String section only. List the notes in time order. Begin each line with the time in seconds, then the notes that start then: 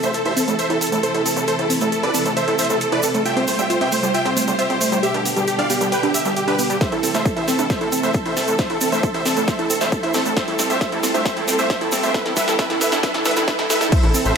Already playing: C3 E3 A3 E4 A4
3.26 G3 F4 G4
5.03 B2 D3 D4
6.81 C3 E3 A3 E4 A4
8.59 D4
10.36 G3 F4 G4
12.14 B2 D3 D4
13.92 C3 E3 A3 E4 A4